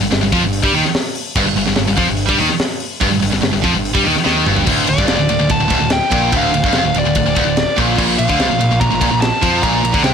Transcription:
0.01 distorted electric guitar G2
0.11 picked electric bass G1, distorted electric guitar G2, snare, open hi-hat
0.21 picked electric bass G1, distorted electric guitar G2
0.32 picked electric bass F2, distorted electric guitar F3, kick, open hi-hat
0.42 picked electric bass G1, distorted electric guitar G2
0.53 open hi-hat
0.63 picked electric bass G2, distorted electric guitar G3, kick
0.73 picked electric bass D#2, distorted electric guitar D#3, open hi-hat
0.85 snare
0.94 snare, open hi-hat
1.15 open hi-hat
1.35 picked electric bass G1, distorted electric guitar G2, kick, crash
1.44 picked electric bass G1, distorted electric guitar G2
1.56 picked electric bass G1, distorted electric guitar G2, open hi-hat
1.66 picked electric bass G1, distorted electric guitar G2, snare
1.76 picked electric bass G1, distorted electric guitar G2, snare, open hi-hat
1.88 picked electric bass G1, distorted electric guitar G2
1.97 picked electric bass F2, distorted electric guitar F3, kick, open hi-hat
2.08 picked electric bass G1, distorted electric guitar G2
2.17 open hi-hat
2.29 picked electric bass G2, distorted electric guitar G3, kick
2.38 picked electric bass D#2, distorted electric guitar D#3, open hi-hat
2.49 snare
2.59 snare, open hi-hat
2.80 open hi-hat
3.01 picked electric bass G1, distorted electric guitar G2, kick, open hi-hat
3.12 picked electric bass G1, distorted electric guitar G2
3.23 picked electric bass G1, distorted electric guitar G2, open hi-hat
3.33 picked electric bass G1, distorted electric guitar G2, snare
3.42 picked electric bass G1, distorted electric guitar G2, snare
3.53 picked electric bass G1, distorted electric guitar G2
3.64 picked electric bass F2, distorted electric guitar F3, kick, open hi-hat
3.74 picked electric bass G1, distorted electric guitar G2
3.85 open hi-hat
3.95 picked electric bass G2, distorted electric guitar G3, kick
4.06 picked electric bass D#2, distorted electric guitar D#3, open hi-hat
4.16 snare
4.26 picked electric bass D#2, distorted electric guitar D#3, snare
4.47 picked electric bass G1, distorted electric guitar G2, mid tom
4.56 floor tom
4.67 picked electric bass D1, distorted electric guitar D2, kick, crash
4.87 picked electric bass D1, distorted electric guitar D2, lead electric guitar D5, ride
4.98 picked electric bass G1, distorted electric guitar G2, kick
5.07 picked electric bass F1, distorted electric guitar F2, snare, ride
5.19 picked electric bass D1, distorted electric guitar D2
5.29 picked electric bass D1, distorted electric guitar D2, ride
5.39 picked electric bass D1, distorted electric guitar D2
5.50 picked electric bass D1, distorted electric guitar D2, lead electric guitar A5, kick, ride
5.60 picked electric bass D1, distorted electric guitar D2
5.68 picked electric bass D1, distorted electric guitar D2, kick, ride
5.72 distorted electric guitar D2
5.81 picked electric bass D1, distorted electric guitar D2
5.90 lead electric guitar G5, snare, ride
6.11 picked electric bass A#1, distorted electric guitar A#2, kick, ride
6.32 picked electric bass D1, distorted electric guitar D2, kick, ride
6.37 lead electric guitar F5
6.53 picked electric bass D1, distorted electric guitar D2, ride
6.64 picked electric bass G1, distorted electric guitar G2, kick
6.73 picked electric bass F1, distorted electric guitar F2, snare, ride
6.79 lead electric guitar F5
6.83 picked electric bass D1, distorted electric guitar D2
6.94 picked electric bass D1, distorted electric guitar D2, ride
6.99 lead electric guitar D5
7.04 picked electric bass D1, distorted electric guitar D2
7.15 picked electric bass D1, distorted electric guitar D2, kick, ride
7.26 picked electric bass D1, distorted electric guitar D2
7.36 picked electric bass D1, distorted electric guitar D2, kick, ride
7.47 picked electric bass D1, distorted electric guitar D2
7.57 snare, ride
7.78 picked electric bass A#1, distorted electric guitar A#2, kick, ride
7.98 picked electric bass A#1, distorted electric guitar A#2, kick, crash
8.18 picked electric bass A#1, distorted electric guitar A#2, lead electric guitar F5, ride
8.29 picked electric bass D2, distorted electric guitar D3, kick
8.40 picked electric bass C2, distorted electric guitar C3, snare, ride
8.51 picked electric bass A#1, distorted electric guitar A#2
8.61 picked electric bass A#1, distorted electric guitar A#2, ride
8.72 picked electric bass A#1, distorted electric guitar A#2
8.80 picked electric bass A#1, distorted electric guitar A#2, lead electric guitar A#5, kick, ride
8.92 picked electric bass A#1, distorted electric guitar A#2
9.01 picked electric bass A#1, distorted electric guitar A#2, kick, ride
9.11 picked electric bass A#1, distorted electric guitar A#2
9.21 lead electric guitar A5, snare, ride
9.43 picked electric bass F2, distorted electric guitar F3, kick, ride
9.63 picked electric bass A#1, distorted electric guitar A#2, lead electric guitar A#5, kick, ride
9.84 picked electric bass A#1, distorted electric guitar A#2, ride
9.94 picked electric bass D2, distorted electric guitar D3, kick
10.04 picked electric bass C2, distorted electric guitar C3, lead electric guitar G5, snare, ride

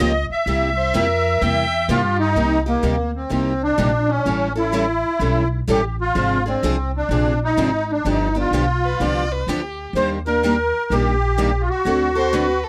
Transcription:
Already playing: accordion D#5
0.00 upright bass C#2, steel-string acoustic guitar C#3 F3 A#3 F4 G4
0.30 accordion E5, muted upright bass stroke
0.46 upright bass C2, steel-string acoustic guitar C3 G3 A#3 E4 G4
0.76 violin C5
0.94 upright bass F2, steel-string acoustic guitar C3 G3 A#3 E4 G4, violin A#4
1.41 upright bass E2, steel-string acoustic guitar C3 G3 A#3 E4 G4, violin G5
1.88 upright bass G2, steel-string acoustic guitar C3 G3 A#3 E4 G4, accordion F4, violin G4
2.20 accordion D#4
2.36 upright bass C2, steel-string acoustic guitar C3 G3 A#3 D#4 G4
2.66 steel-string acoustic guitar A#3 D#4 G4, accordion A#3
2.83 upright bass D2, steel-string acoustic guitar C3 G3 A#3 D#4 G4
3.16 accordion C4
3.30 upright bass C2, steel-string acoustic guitar C3 G3 A#3 D#4 G4, accordion C4
3.63 accordion D4
3.78 upright bass A#1, steel-string acoustic guitar C3 G3 A#3 D#4 G4
4.09 accordion C#4
4.26 upright bass A1, steel-string acoustic guitar E3 G3 C#4 E4 A4
4.55 steel-string acoustic guitar C#4 E4 A4, accordion E4
4.72 steel-string acoustic guitar E3 G3 C#4 E4 A4
5.20 upright bass B1, steel-string acoustic guitar E3 G3 C#4 E4 A4
5.67 upright bass A1, steel-string acoustic guitar E3 G3 C#4 E4 A4
5.72 accordion G4
6.01 accordion F4
6.15 upright bass G#1, steel-string acoustic guitar C3 F3 C4 D4 G#4
6.46 steel-string acoustic guitar C4 D4 G#4, accordion C4
6.63 upright bass C2, steel-string acoustic guitar C3 F3 C4 D4 G#4
6.97 accordion D4
7.09 upright bass A#1, steel-string acoustic guitar C3 F3 C4 D4 G#4
7.44 accordion D#4
7.57 upright bass G#1, steel-string acoustic guitar C3 F3 C4 D4 G#4
7.92 accordion D4
8.05 upright bass G1, steel-string acoustic guitar D3 F3 B3 D4 G4
8.10 accordion D#4
8.35 steel-string acoustic guitar B3 D4 G4
8.40 accordion F4
8.51 upright bass B1, steel-string acoustic guitar D3 F3 B3 D4 G4
8.85 violin B4
9.00 upright bass C2, steel-string acoustic guitar D3 F3 B3 D4 G4, violin D5
9.32 violin B4
9.47 upright bass D2, steel-string acoustic guitar D3 F3 B3 D4 G4, violin G4
9.93 upright bass D#2, steel-string acoustic guitar D#3 G3 A#3 D4, accordion C5
9.97 steel-string acoustic guitar G4
10.26 steel-string acoustic guitar A#3 D4 G4, accordion A#4
10.44 steel-string acoustic guitar D#3 G3 A#3 D4 G4
10.90 upright bass A#1, steel-string acoustic guitar D#3 G3 A#3 D4 G4, accordion G4
11.38 steel-string acoustic guitar D#3 G3 A#3 D4 G4
11.61 accordion F4
11.69 accordion F#4
11.85 upright bass D2, steel-string acoustic guitar D3 A3 C4 F#4 A4
12.15 steel-string acoustic guitar C4 F#4 A4, violin C5
12.33 steel-string acoustic guitar D3 A3 C4 F#4 A4, violin B4
12.64 violin A4

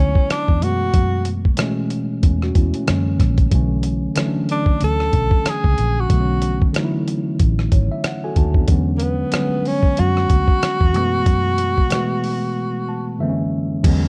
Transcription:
Already playing: tine electric piano D3 F#3 G#3 B3 C#4 E4, tenor saxophone C#4
0.00 fingered electric bass D2
0.15 kick
0.30 tenor saxophone D4, cross-stick, closed hi-hat
0.48 fingered electric bass E2, kick
0.61 fingered electric bass F#2, tine electric piano B2 E3 G#3 A3, tenor saxophone F#4, closed hi-hat
0.65 tine electric piano B3
0.94 fingered electric bass F#2, kick, closed hi-hat
1.25 closed hi-hat
1.45 kick
1.57 tine electric piano B2 E3 G#3 A3, cross-stick, closed hi-hat
1.62 tine electric piano C#4
1.90 closed hi-hat
2.23 fingered electric bass E2, tine electric piano A3 C#4, kick, closed hi-hat
2.42 tine electric piano F#4, cross-stick
2.55 fingered electric bass E2, tine electric piano C#4 E4, kick, closed hi-hat
2.74 tine electric piano A3 C#4, closed hi-hat
2.86 fingered electric bass F#2, tine electric piano D3 E3 G#3 A#3, cross-stick, closed hi-hat
2.90 tine electric piano C#4
3.20 fingered electric bass A#1, kick, cross-stick, closed hi-hat
3.38 kick, closed hi-hat
3.51 fingered electric bass B1, tine electric piano D3 E3 F#3 A3, kick, closed hi-hat
3.55 tine electric piano C#4
3.83 closed hi-hat
4.15 tine electric piano D3 E3 F#3 A3, cross-stick, closed hi-hat
4.20 tine electric piano C#4
4.26 tine electric piano D4
4.49 tenor saxophone D4, closed hi-hat
4.66 kick
4.81 fingered electric bass D2, tenor saxophone A4, closed hi-hat
5.00 cross-stick
5.13 fingered electric bass B1, kick, closed hi-hat
5.31 kick
5.46 tenor saxophone G#4, cross-stick, closed hi-hat
5.64 fingered electric bass C#2, kick
5.78 fingered electric bass A#1, closed hi-hat
6.00 tenor saxophone F#4
6.09 fingered electric bass B1, tine electric piano D3 E3 F#3 A3, kick, closed hi-hat
6.14 tine electric piano B3
6.20 tine electric piano C#4
6.42 closed hi-hat
6.62 kick
6.73 tine electric piano D3 E3 F#3 A3, cross-stick, closed hi-hat
6.78 tine electric piano D#4
6.84 tine electric piano E4
7.08 closed hi-hat
7.40 fingered electric bass A1, kick, closed hi-hat
7.59 cross-stick
7.72 fingered electric bass G#1, tine electric piano C#5, kick, closed hi-hat
7.92 tine electric piano E5
8.04 tine electric piano F#5, cross-stick, closed hi-hat
8.24 tine electric piano F#4 A4 G#5
8.36 fingered electric bass D#2, tine electric piano D4 F#4 A5, kick, closed hi-hat
8.54 tine electric piano B3 D4, kick
8.67 fingered electric bass E2, tine electric piano D3 F#3 G#3 B3, kick, closed hi-hat
8.72 tine electric piano C#4
8.98 tenor saxophone A#3, closed hi-hat
9.03 tenor saxophone B3
9.32 tine electric piano D3 F#3 G3 B3, cross-stick, closed hi-hat
9.37 tine electric piano C#4
9.41 tine electric piano G#3
9.65 tenor saxophone C#4, open hi-hat
9.83 kick
9.97 fingered electric bass F#2, tenor saxophone F#4, closed hi-hat
10.17 cross-stick
10.30 fingered electric bass D2, kick, closed hi-hat
10.48 kick
10.63 cross-stick, closed hi-hat
10.81 fingered electric bass E2, kick
10.93 fingered electric bass F#2, tine electric piano B2 E3 G#3 A3, closed hi-hat
10.98 tine electric piano B3
11.26 fingered electric bass F#2, kick, closed hi-hat
11.58 closed hi-hat
11.78 kick
11.90 tine electric piano B2 E3 G#3 A3, cross-stick, closed hi-hat
11.94 tine electric piano B3
12.24 open hi-hat
12.89 tine electric piano A5
13.18 tine electric piano F#2 D3 E3 G#3 A#3 E5
13.23 tine electric piano C4
13.29 tine electric piano C#4
13.83 fingered electric bass E2, tine electric piano D3 F#3 G#3 B3, kick, closed hi-hat, crash
13.87 tine electric piano C#4

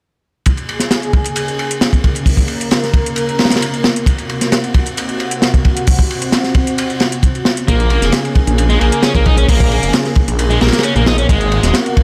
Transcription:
0.46 analog synth pad C#3 A#3 G#4, kick, closed hi-hat, ride
0.57 closed hi-hat, ride
0.69 ride
0.80 snare, closed hi-hat
0.91 snare, closed hi-hat, ride
1.02 closed hi-hat, ride
1.13 kick, ride
1.24 closed hi-hat, ride
1.36 closed hi-hat, ride
1.48 closed hi-hat
1.59 ride
1.71 closed hi-hat
1.81 snare, closed hi-hat, ride
1.93 kick, closed hi-hat
2.04 kick, ride
2.15 closed hi-hat, ride
2.26 analog synth pad A#4, kick, closed hi-hat, open hi-hat
2.37 kick, closed hi-hat
2.48 ride
2.61 closed hi-hat
2.71 snare, closed hi-hat, ride
2.84 snare, closed hi-hat
2.94 kick, ride
3.06 closed hi-hat
3.16 closed hi-hat, ride
3.29 closed hi-hat
3.39 snare, ride
3.45 snare, ride
3.50 snare, closed hi-hat, ride
3.56 snare, ride
3.62 closed hi-hat, ride
3.74 closed hi-hat
3.84 snare, ride
3.96 closed hi-hat
4.06 analog synth pad C3 F#4, kick, closed hi-hat, ride
4.18 closed hi-hat, ride
4.29 ride
4.41 snare, closed hi-hat
4.52 snare, closed hi-hat, ride
4.64 closed hi-hat, ride
4.74 kick, ride
4.86 closed hi-hat, ride
4.97 closed hi-hat, ride
5.09 closed hi-hat
5.20 ride
5.31 closed hi-hat
5.42 snare, closed hi-hat, ride
5.54 kick, closed hi-hat
5.65 kick, ride
5.77 closed hi-hat, ride
5.87 analog synth pad C4, kick, closed hi-hat, open hi-hat
5.99 kick, closed hi-hat
6.10 ride
6.22 closed hi-hat
6.32 snare, closed hi-hat, ride
6.44 snare, closed hi-hat
6.55 kick, ride
6.67 closed hi-hat
6.78 closed hi-hat, ride
6.90 closed hi-hat
7.00 snare, ride
7.12 closed hi-hat, ride
7.23 kick, closed hi-hat, ride
7.35 closed hi-hat, ride
7.45 snare, ride
7.57 closed hi-hat
7.68 detuned saw bass A#1, analog synth pad C#3 A#3 G#4, overdriven electric guitar A#3, kick, closed hi-hat, ride
7.80 closed hi-hat, ride
7.90 ride
8.02 detuned saw bass F1, snare, closed hi-hat
8.12 snare, closed hi-hat, ride
8.25 closed hi-hat, ride
8.35 kick, ride
8.47 detuned saw bass A#1, closed hi-hat, ride
8.58 closed hi-hat, ride
8.69 overdriven electric guitar G#3, closed hi-hat
8.80 detuned saw bass A#1, overdriven electric guitar A#3, ride
8.92 closed hi-hat
9.03 overdriven electric guitar C#4, snare, closed hi-hat, ride
9.15 detuned saw bass A#1, overdriven electric guitar A#3, kick, closed hi-hat
9.26 overdriven electric guitar D#4, kick, ride
9.37 overdriven electric guitar C#4, closed hi-hat, ride
9.49 detuned saw bass A#1, overdriven electric guitar A#3, kick, closed hi-hat, open hi-hat
9.60 kick, closed hi-hat
9.72 ride
9.83 detuned saw bass F1, closed hi-hat
9.93 snare, closed hi-hat, ride
10.05 snare, closed hi-hat
10.15 kick, ride
10.28 detuned saw bass A#1, closed hi-hat
10.39 closed hi-hat, ride
10.50 overdriven electric guitar G#3, closed hi-hat
10.61 detuned saw bass A#1, overdriven electric guitar A#3, snare, ride
10.67 snare, ride
10.72 snare, closed hi-hat, ride
10.79 snare, ride
10.83 overdriven electric guitar C#4, closed hi-hat, ride
10.96 detuned saw bass A#1, overdriven electric guitar A#3, closed hi-hat
11.06 overdriven electric guitar D#4, snare, ride
11.18 overdriven electric guitar C#4, closed hi-hat
11.29 detuned saw bass G#1, analog synth pad C3 F#4, overdriven electric guitar G#3, kick, closed hi-hat, ride
11.41 closed hi-hat, ride
11.52 ride
11.63 detuned saw bass D#1, snare, closed hi-hat
11.74 snare, closed hi-hat, ride
11.86 closed hi-hat, ride
11.97 kick, ride

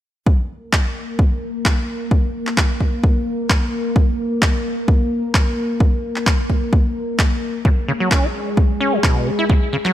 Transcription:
0.27 ambient pad A#3 A#4, kick
0.73 kick, clap
1.19 kick
1.65 kick, clap
2.11 kick
2.47 clap
2.57 kick, clap
2.80 kick
3.04 kick
3.50 kick, clap
3.96 kick
4.42 kick, clap
4.88 kick
5.34 kick, clap
5.80 kick
6.16 clap
6.27 kick, clap
6.50 kick
6.73 kick
7.19 kick, clap
7.65 acid bass C#3, ambient pad G#3 G#4, kick
7.88 acid bass C#3
8.00 acid bass F#3
8.11 acid bass C#4, kick, clap
8.23 acid bass E4
8.57 kick
8.80 acid bass C#4
8.93 acid bass F#3
9.03 acid bass B2, kick, clap
9.27 acid bass C#3
9.39 acid bass E4
9.50 acid bass C#3, kick
9.73 acid bass C#3
9.85 acid bass F#3, clap

